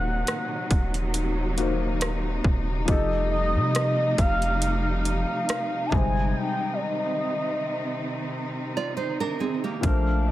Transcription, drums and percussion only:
0.27 cross-stick loud
0.27 closed hi-hat medium
0.71 kick medium
0.71 closed hi-hat medium
0.94 closed hi-hat soft
1.14 closed hi-hat medium
1.58 closed hi-hat medium
2.01 cross-stick loud
2.01 closed hi-hat medium
2.44 kick medium
2.88 kick loud
2.88 closed hi-hat medium
3.75 cross-stick loud
3.75 closed hi-hat medium
4.18 kick medium
4.18 closed hi-hat medium
4.42 closed hi-hat soft
4.62 closed hi-hat medium
5.05 closed hi-hat medium
5.49 cross-stick loud
5.49 closed hi-hat medium
5.92 kick medium
9.83 kick loud
9.83 closed hi-hat medium

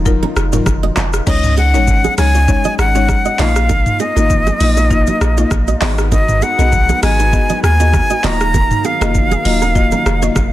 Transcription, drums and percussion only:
0.06 kick loud
0.06 shaker medium
0.23 high conga medium
0.36 cross-stick loud
0.36 shaker medium
0.53 mid tom medium
0.53 shaker medium
0.66 kick medium
0.66 cross-stick loud
0.66 high conga medium
0.66 low conga medium
0.66 shaker medium
0.97 clap medium
0.97 high conga medium
0.97 low conga medium
0.97 shaker medium
1.13 cross-stick medium
1.13 shaker medium
1.27 kick loud
1.27 crash loud
1.27 low conga medium
1.27 shaker medium
1.44 mid tom medium
1.44 shaker medium
1.57 shaker soft
1.74 shaker medium
1.87 kick loud
1.87 shaker medium
2.04 high conga medium
2.04 shaker soft
2.18 cross-stick loud
2.18 open hi-hat medium
2.18 high conga medium
2.18 shaker medium
2.35 shaker medium
2.48 kick loud
2.48 shaker medium
2.64 high conga medium
2.64 shaker medium
2.79 cross-stick loud
2.79 shaker medium
2.95 shaker medium
3.08 kick loud
3.08 cross-stick loud
3.08 high conga medium
3.08 low conga medium
3.08 shaker medium
3.25 shaker medium
3.39 clap medium
3.39 open hi-hat medium
3.39 high conga medium
3.39 low conga medium
3.56 cross-stick medium
3.56 shaker medium
3.69 kick loud
3.69 low conga medium
3.69 shaker medium
3.86 mid tom loud
3.86 shaker medium
3.99 shaker medium
4.17 shaker medium
4.30 kick medium
4.30 shaker medium
4.47 high conga medium
4.47 shaker soft
4.60 open hi-hat medium
4.60 high conga medium
4.60 shaker medium
4.77 shaker medium
4.91 kick loud
4.91 shaker medium
5.07 high conga medium
5.07 shaker medium
5.21 cross-stick loud
5.21 shaker medium
5.37 shaker medium
5.51 kick medium
5.51 cross-stick loud
5.51 high conga medium
5.51 low conga medium
5.51 shaker medium
5.67 shaker medium
5.82 clap medium
5.82 open hi-hat medium
5.82 high conga medium
5.82 low conga medium
5.98 cross-stick medium
5.98 shaker medium
6.12 kick loud
6.12 low conga medium
6.12 shaker medium
6.28 mid tom loud
6.28 shaker medium
6.42 shaker medium
6.59 shaker medium
6.72 kick loud
6.72 shaker medium
6.89 high conga medium
6.89 shaker medium
7.03 cross-stick loud
7.03 open hi-hat medium
7.03 high conga medium
7.03 shaker medium
7.19 shaker medium
7.33 kick loud
7.33 shaker medium
7.49 high conga medium
7.49 shaker medium
7.64 cross-stick loud
7.64 shaker medium
7.80 shaker medium
7.93 kick medium
7.93 cross-stick loud
7.93 high conga medium
7.93 low conga medium
7.93 shaker medium
8.10 shaker medium
8.24 clap medium
8.24 open hi-hat medium
8.24 high conga medium
8.24 low conga medium
8.41 cross-stick medium
8.41 shaker medium
8.54 kick loud
8.54 low conga medium
8.54 shaker medium
8.71 mid tom loud
8.71 shaker medium
8.84 shaker medium
9.02 cross-stick loud
9.02 shaker soft
9.15 kick loud
9.15 shaker medium
9.31 high conga medium
9.31 shaker soft
9.45 open hi-hat medium
9.45 high conga medium
9.62 shaker medium
9.75 kick loud
9.75 shaker medium
9.91 high conga medium
9.91 shaker medium
10.06 cross-stick loud
10.06 shaker medium
10.22 shaker medium
10.36 kick medium
10.36 cross-stick loud
10.36 high conga medium
10.36 low conga medium
10.36 shaker medium

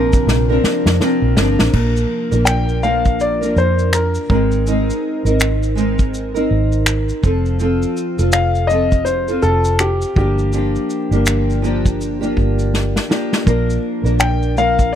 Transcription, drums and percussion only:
0.13 kick medium
0.13 shaker medium
0.28 snare medium
0.64 snare medium
0.86 snare medium
1.01 snare medium
1.37 snare loud
1.59 snare medium
1.73 kick loud
1.73 crash medium
1.97 shaker soft
2.32 shaker soft
2.46 finger snap medium
2.46 shaker medium
2.69 shaker soft
2.83 shaker soft
3.05 kick medium
3.05 shaker soft
3.20 shaker medium
3.43 shaker soft
3.57 shaker soft
3.79 shaker soft
3.93 finger snap medium
3.93 shaker medium
4.15 shaker soft
4.30 kick loud
4.51 shaker soft
4.67 shaker medium
4.90 shaker soft
5.26 shaker soft
5.40 finger snap loud
5.40 shaker medium
5.63 shaker soft
5.78 shaker soft
5.99 kick medium
5.99 shaker soft
6.14 shaker medium
6.36 shaker soft
6.72 shaker soft
6.86 finger snap medium
6.86 shaker medium
7.09 shaker medium
7.24 kick medium
7.24 shaker soft
7.46 shaker soft
7.60 shaker medium
7.82 shaker soft
7.97 shaker soft
8.19 shaker soft
8.32 finger snap loud
8.32 shaker medium
8.55 shaker soft
8.70 shaker soft
8.92 kick medium
8.92 shaker soft
9.06 shaker medium
9.28 shaker soft
9.42 shaker soft
9.64 shaker soft
9.79 finger snap medium
9.79 shaker medium
10.02 shaker medium
10.16 kick medium
10.39 shaker soft
10.53 shaker medium
10.76 shaker soft
10.90 shaker soft
11.12 shaker soft
11.26 finger snap loud
11.26 shaker medium
11.50 shaker soft
11.64 shaker soft
11.86 kick medium
11.86 shaker soft
12.01 shaker medium
12.23 shaker soft
12.37 kick medium
12.59 shaker soft
12.74 snare soft
12.96 snare medium
13.11 snare medium
13.33 snare medium
13.47 kick loud
13.47 shaker medium
13.70 shaker soft
14.06 shaker soft
14.19 finger snap loud
14.19 shaker medium
14.43 shaker soft
14.57 shaker soft
14.79 kick medium
14.79 shaker soft

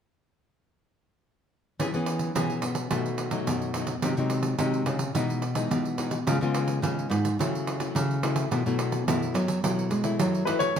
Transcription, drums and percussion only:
1.80 pandeiro medium
1.94 pandeiro soft
2.06 pandeiro medium
2.19 pandeiro medium
2.36 pandeiro medium
2.50 pandeiro soft
2.62 pandeiro medium
2.75 pandeiro medium
2.91 pandeiro medium
3.06 pandeiro soft
3.18 pandeiro medium
3.31 pandeiro medium
3.47 pandeiro medium
3.62 pandeiro soft
3.74 pandeiro medium
3.87 pandeiro medium
4.02 pandeiro medium
4.18 pandeiro soft
4.30 pandeiro medium
4.43 pandeiro medium
4.59 pandeiro medium
4.74 pandeiro soft
4.86 pandeiro medium
4.99 pandeiro medium
5.15 pandeiro medium
5.30 pandeiro soft
5.42 pandeiro medium
5.55 pandeiro medium
5.71 pandeiro medium
5.85 pandeiro soft
5.98 pandeiro medium
6.11 pandeiro medium
6.27 pandeiro medium
6.42 pandeiro soft
6.54 pandeiro medium
6.68 pandeiro medium
6.83 pandeiro medium
6.99 pandeiro soft
7.11 pandeiro medium
7.25 pandeiro medium
7.41 pandeiro medium
7.55 pandeiro soft
7.67 pandeiro medium
7.80 pandeiro medium
7.96 pandeiro medium
8.11 pandeiro soft
8.23 pandeiro medium
8.36 pandeiro medium
8.52 pandeiro medium
8.66 pandeiro soft
8.79 pandeiro medium
8.92 pandeiro medium
9.08 pandeiro medium
9.22 pandeiro soft
9.35 pandeiro medium
9.48 pandeiro medium
9.64 pandeiro medium
9.79 pandeiro soft
9.91 pandeiro medium
10.04 pandeiro medium
10.19 pandeiro medium
10.35 pandeiro soft
10.47 pandeiro medium
10.60 pandeiro medium
10.76 pandeiro medium

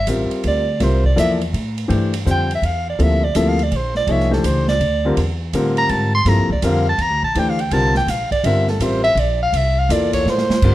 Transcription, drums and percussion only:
0.07 hi-hat pedal medium
0.07 ride medium
0.31 ride soft
0.44 ride medium
0.80 snare soft
0.80 ride medium
1.04 kick medium
1.18 hi-hat pedal medium
1.18 ride medium
1.41 ride soft
1.54 ride medium
1.78 ride soft
1.90 ride medium
2.14 ride medium
2.27 hi-hat pedal medium
2.51 ride soft
2.63 ride medium
3.00 ride medium
3.35 hi-hat pedal medium
3.35 ride medium
3.59 ride soft
3.72 ride medium
3.95 snare soft
4.07 ride medium
4.20 snare soft
4.33 snare soft
4.44 hi-hat pedal medium
4.44 ride medium
4.68 snare medium
4.81 ride medium
5.17 ride medium
5.53 hi-hat pedal soft
5.53 ride medium
5.77 ride soft
5.89 ride medium
6.26 snare soft
6.26 ride medium
6.49 kick medium
6.62 hi-hat pedal medium
6.62 ride medium
6.98 ride medium
7.35 ride medium
7.59 ride soft
7.71 ride medium
7.95 snare soft
8.08 snare soft
8.08 hi-hat pedal medium
8.08 ride medium
8.31 kick medium
8.31 ride soft
8.44 ride medium
8.68 snare soft
8.80 hi-hat pedal medium
8.80 ride medium
9.04 ride soft
9.17 ride medium
9.54 ride medium
9.90 hi-hat pedal medium
9.90 ride medium
10.13 kick soft
10.13 ride medium
10.27 snare soft
10.38 snare medium
10.50 snare medium
10.62 kick medium
10.62 crash medium

